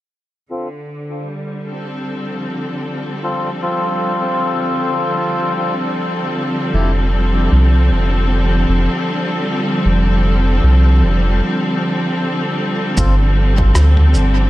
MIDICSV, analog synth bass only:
0, 0, Header, 1, 2, 480
1, 0, Start_track
1, 0, Tempo, 779221
1, 312, Time_signature, 4, 2, 24, 8
1, 8931, End_track
2, 0, Start_track
2, 0, Title_t, "Analog synth bass"
2, 0, Program_c, 0, 38
2, 4151, Note_on_c, 0, 29, 90
2, 4611, Note_off_c, 0, 29, 0
2, 4632, Note_on_c, 0, 36, 87
2, 4872, Note_on_c, 0, 29, 76
2, 4881, Note_off_c, 0, 36, 0
2, 5332, Note_off_c, 0, 29, 0
2, 5352, Note_on_c, 0, 29, 79
2, 5471, Note_off_c, 0, 29, 0
2, 6071, Note_on_c, 0, 29, 92
2, 6531, Note_off_c, 0, 29, 0
2, 6552, Note_on_c, 0, 36, 90
2, 6792, Note_on_c, 0, 29, 80
2, 6801, Note_off_c, 0, 36, 0
2, 7032, Note_off_c, 0, 29, 0
2, 7992, Note_on_c, 0, 31, 96
2, 8452, Note_off_c, 0, 31, 0
2, 8472, Note_on_c, 0, 38, 91
2, 8713, Note_on_c, 0, 31, 80
2, 8722, Note_off_c, 0, 38, 0
2, 8931, Note_off_c, 0, 31, 0
2, 8931, End_track
0, 0, End_of_file